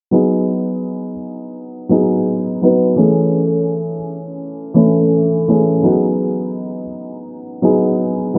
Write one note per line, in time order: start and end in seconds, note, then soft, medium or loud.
0.11 1.09 F#3 medium
0.11 1.10 B3 medium
0.11 1.10 D#4 medium
0.11 1.11 G#4 medium
1.89 2.40 F#3 medium
1.89 2.41 B3 medium
1.89 2.41 D#4 medium
1.89 2.42 G#4 medium
2.62 2.89 F#3 medium
2.62 2.89 B3 medium
2.62 2.90 D#4 medium
2.62 2.90 B4 medium
2.96 3.95 E3 medium
2.96 3.95 A3 medium
2.96 3.96 C#4 medium
2.96 3.96 G#4 medium
4.74 5.26 E3 medium
4.74 5.26 A3 medium
4.74 5.26 C#4 medium
4.74 5.27 E4 medium
5.48 5.75 E3 medium
5.48 5.75 A3 medium
5.48 5.76 C#4 medium
5.48 5.76 G#4 medium
5.82 6.81 F#3 medium
5.82 6.81 B3 medium
5.82 6.82 D#4 medium
5.82 5.92 F#4 medium
5.91 6.85 G#4 medium
7.62 8.12 F#3 medium
7.62 8.13 B3 medium
7.62 8.13 D#4 medium
7.62 8.14 G#4 medium
8.34 8.38 F#3 medium
8.34 8.38 B3 medium
8.34 8.38 D#4 medium